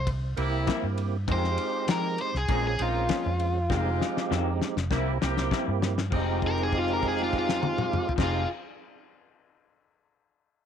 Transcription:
0.00 0.35 C2 medium
0.07 kick loud
0.07 ride medium
0.37 0.66 C2 medium
0.37 1.17 A#3 medium
0.37 0.83 A#3 medium
0.37 1.17 C4 medium
0.37 0.83 C4 medium
0.37 1.17 E4 medium
0.37 0.84 E4 loud
0.37 1.17 G4 medium
0.37 ride medium
0.67 0.86 C3 medium
0.67 0.86 G3 medium
0.67 0.86 A#3 loud
0.67 0.87 E4 loud
0.67 kick medium
0.67 snare loud
0.67 ride medium
0.83 1.26 G2 medium
0.98 ride medium
1.28 1.56 F2 loud
1.28 1.47 F2 medium
1.28 1.47 D#3 medium
1.28 2.34 G#3 medium
1.28 1.47 G#3 medium
1.28 1.89 G#3 medium
1.28 2.35 C4 medium
1.28 1.47 C4 medium
1.28 2.35 D#4 medium
1.28 1.89 D#4 medium
1.28 1.89 F4 medium
1.28 2.35 G4 medium
1.28 kick loud
1.28 ride medium
1.32 1.89 C5 loud
1.44 snare soft
1.58 ride medium
1.88 2.07 F2 medium
1.88 2.07 D#3 medium
1.88 2.17 F3 medium
1.88 2.07 G#3 medium
1.88 2.08 C4 medium
1.88 2.19 A#4 medium
1.88 snare loud
1.88 ride medium
2.18 2.35 C5 medium
2.18 ride medium
2.34 2.48 C2 medium
2.34 2.65 G#4 medium
2.34 snare soft
2.48 2.78 A#1 loud
2.48 2.68 A#2 medium
2.48 2.68 F3 medium
2.48 2.76 G#3 medium
2.48 2.68 G#3 medium
2.48 2.74 A#3 medium
2.48 2.76 C4 medium
2.48 2.76 C#4 medium
2.48 2.74 C#4 medium
2.48 2.68 C#4 medium
2.48 2.76 F4 medium
2.48 2.74 G#4 medium
2.48 kick loud
2.48 ride medium
2.67 2.82 G#4 medium
2.79 3.08 A#1 medium
2.79 3.59 G#3 medium
2.79 3.25 A#3 medium
2.79 3.59 C4 medium
2.79 3.59 C#4 medium
2.79 3.25 D#4 medium
2.79 3.60 F4 medium
2.79 4.58 F4 medium
2.79 ride medium
3.09 3.28 A#2 medium
3.09 3.28 F3 medium
3.09 3.28 G#3 medium
3.09 3.28 C#4 medium
3.09 kick medium
3.09 snare loud
3.09 ride medium
3.26 3.68 F2 medium
3.40 ride medium
3.70 3.99 F1 loud
3.70 3.89 F2 medium
3.70 3.89 D#3 medium
3.70 4.31 G#3 medium
3.70 4.77 G#3 medium
3.70 3.89 G#3 medium
3.70 4.77 C4 medium
3.70 3.89 C4 medium
3.70 4.30 D#4 medium
3.70 4.77 D#4 medium
3.70 4.31 F4 loud
3.70 4.77 G4 loud
3.70 kick loud
3.70 snare medium
4.01 snare medium
4.17 snare medium
4.31 4.49 F2 medium
4.31 4.59 F2 medium
4.31 4.49 D#3 loud
4.31 4.50 G#3 medium
4.31 4.50 C4 medium
4.31 snare medium
4.62 snare medium
4.77 4.90 F1 medium
4.77 snare medium
4.91 5.20 C2 loud
4.91 5.10 C3 medium
4.91 5.10 G3 medium
4.91 5.15 A#3 loud
4.91 5.18 A#3 loud
4.91 5.10 A#3 medium
4.91 5.16 C4 medium
4.91 5.18 C4 medium
4.91 5.18 E4 medium
4.91 5.16 E4 loud
4.91 5.10 E4 medium
4.91 5.18 G4 loud
4.91 kick loud
4.91 snare medium
5.21 5.51 C2 medium
5.21 6.01 A#3 medium
5.21 5.67 A#3 medium
5.21 6.01 C4 medium
5.21 5.68 C4 medium
5.21 6.02 E4 medium
5.21 6.02 G4 medium
5.21 5.68 G4 loud
5.21 snare loud
5.37 snare medium
5.51 5.70 C3 medium
5.51 5.70 G3 medium
5.51 5.70 A#3 loud
5.51 5.71 E4 medium
5.51 kick medium
5.51 snare medium
5.68 6.10 G2 medium
5.82 snare medium
5.98 snare medium
6.11 8.07 F1 medium
6.11 8.16 F3 medium
6.11 8.07 G#3 medium
6.11 8.08 G#3 medium
6.11 8.07 C4 medium
6.11 8.18 C4 medium
6.11 8.07 D#4 medium
6.11 8.07 F4 loud
6.11 8.07 G4 medium
6.11 kick loud
6.11 crash medium
6.15 8.19 D#4 medium
6.42 kick medium
6.42 crash soft
6.47 6.60 A#4 loud
6.58 crash soft
6.63 6.78 G#4 medium
6.72 kick medium
6.72 crash soft
6.78 6.91 F4 medium
6.88 crash medium
6.93 7.05 A#4 medium
7.03 kick medium
7.03 crash soft
7.08 7.21 G#4 medium
7.18 crash medium
7.23 7.36 F4 medium
7.33 kick medium
7.33 crash medium
7.38 8.12 F4 loud
7.49 snare medium
7.63 high tom loud
7.78 mid tom loud
7.93 mid tom loud
8.09 floor tom loud
8.16 8.44 F1 loud
8.16 8.45 F3 medium
8.16 8.44 G#3 medium
8.16 8.44 C4 medium
8.16 8.46 C4 medium
8.16 8.44 D#4 medium
8.16 8.44 F4 loud
8.16 8.44 G4 medium
8.16 kick loud
8.16 snare loud
8.16 crash loud
8.21 8.47 D#4 medium
8.21 8.47 F4 medium
8.21 8.48 G#4 medium

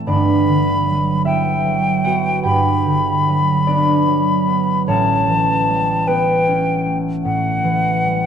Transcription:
0.00 0.12 A2 medium
0.00 0.12 E3 medium
0.00 2.35 G3 soft
0.00 0.12 A3 medium
0.00 0.12 C4 medium
0.00 0.12 E4 soft
0.00 0.11 C5 medium
0.07 3.97 G1 medium
0.07 2.43 G2 medium
0.07 3.67 D4 medium
0.07 3.66 D5 medium
0.07 1.22 B5 medium
0.48 2.85 D3 soft
0.87 1.64 F#3 soft
1.25 2.04 B3 medium
1.25 5.17 E4 medium
1.25 2.61 E5 medium
1.25 2.43 G5 medium
1.65 3.26 F#3 medium
2.04 3.67 B3 soft
2.04 4.91 F#4 medium
2.04 4.90 F#5 medium
2.43 4.90 G2 medium
2.43 6.35 G4 medium
2.43 6.33 G5 medium
2.43 4.83 B5 medium
2.86 4.90 D3 soft
3.27 4.06 F#3 soft
3.67 4.46 B3 medium
3.67 4.91 D4 medium
3.67 4.90 D5 medium
4.07 4.91 F#3 medium
4.47 6.07 B3 medium
4.87 8.26 A1 medium
4.87 7.24 A2 medium
4.87 6.46 C#4 medium
4.87 8.26 C#5 medium
4.87 6.09 A5 medium
5.28 7.62 E3 soft
5.69 8.03 G3 soft
6.07 8.26 B3 medium
6.07 8.26 B4 medium
6.07 6.98 G5 medium
6.47 8.26 C#4 medium
6.86 8.26 A3 soft
7.24 8.26 A2 medium
7.24 8.26 F#5 medium
7.64 8.26 E3 medium
8.05 8.26 G3 soft

